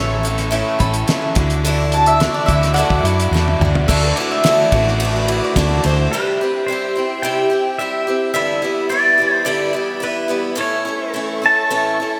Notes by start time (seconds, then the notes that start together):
Already playing: A1 A2 A3 C#4 E4 A4 C#5 E5 C#6
0.00 A4
0.23 C#4 E4 A4, closed hi-hat
0.38 snare, closed hi-hat
0.51 A2 A3 C#4 E4 A4, closed hi-hat
0.79 A1 C#4 E4 A4 B5, kick, closed hi-hat
0.94 closed hi-hat
1.07 A3 C#4 E4 A4, snare, closed hi-hat
1.35 D2 D3 D4 E4 F#4 E5 D6, kick, closed hi-hat
1.50 closed hi-hat
1.65 D3 A3 D4 E4 F#4, closed hi-hat
1.92 E4 F#4 A5, closed hi-hat
1.97 D4
2.06 E5, closed hi-hat
2.20 A3 D4 F#4, snare, closed hi-hat
2.24 E4
2.34 D5
2.46 D2 E4 F#4 E5, kick, closed hi-hat
2.50 D4
2.63 snare, closed hi-hat
2.74 D3 F#4 D5 F#5, closed hi-hat
2.79 A3 D4 E4 F#4
2.90 D2, kick
3.03 F#2 D4 E4 F#4, closed hi-hat
3.20 closed hi-hat
3.31 E2 A3 D4 F#4
3.35 E4, snare
3.48 high tom
3.60 D2 E4 F#4, mid tom
3.65 D4
3.75 floor tom
3.87 D2 D3 A3 D4 E4 F#4 A4 E5 D6, kick, crash
4.04 B4
4.16 E4 D5, ride
4.20 D4 F#4
4.31 E5
4.44 D3 A3 D4 E4 F#4, snare, ride
4.72 A1 D3 A3 E4 F#4, kick, ride
4.76 D4
4.84 D5, snare
5.00 A3 D4, ride
5.04 E4 F#4
5.16 B4
5.28 D4 E4 F#4, ride
5.44 D5
5.56 D2 D3 A3 D4 E4 F#4, kick, snare, ride
5.84 D2 E4 F#4 C5, ride
5.89 D4
6.12 C3 G3 C4 E4 G4 B4
6.16 G4 E5 G5
6.41 C4 E4 G4
6.67 G3 C4 E4 C5
6.72 G4
6.96 C4 E4 G4
7.22 C3 G3 C4 E4 G4 G5
7.50 C4 E4 G4
7.79 G3 C4 E4 G4 E5
8.07 C4 E4 G4
8.33 G2 D3 E3 G3 B3 E4 G4 E5 B5
8.62 E3 G3 B3 E4
8.89 E3 G3 B3 E4 D5
9.18 E3 G3 B3 E4
9.45 G2 D3 E3 G3 B3 E4 D5
9.73 E3 G3 B3 E4
10.00 E3 G3 B3 E4 B4
10.28 E3 G3 B3 E4
10.55 A2 E3 A3 C#4 E4 A4 E5 C#6
10.61 C#5
10.85 A3 C#4 E4
11.14 E3 A3 C#4 E4
11.42 A3 C#4 E4 A5
11.70 A2 E3 A3 C#4 E4
12.00 A3 C#4 E4